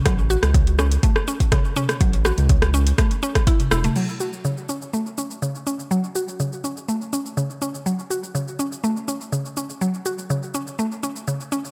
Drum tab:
CC |----------------|----------------|x---------------|----------------|
HH |x--xxx-xx--xx--x|xx-xxx-xxx-xxx-x|----------------|----------------|
SH |xxxxxxxxxxxxxxxx|xxxxxxxxxxxxxxxx|xxxxxxxxxxxxxxxx|xxxxxxxxxxxxxxxx|
SD |r--r--r--r--r--r|--r--r--r--r--r-|----------------|----------------|
T2 |--------------o-|---o---------o-o|----------------|----------------|
BD |o---o---o--oo---|o---o---o--oo---|----------------|----------------|

CC |----------------|----------------|
HH |----------------|----------------|
SH |xxxxxxxxxxxxxxxx|xxxxxxxxxxxxxxxx|
SD |----------------|----------------|
T2 |----------------|----------------|
BD |----------------|----------------|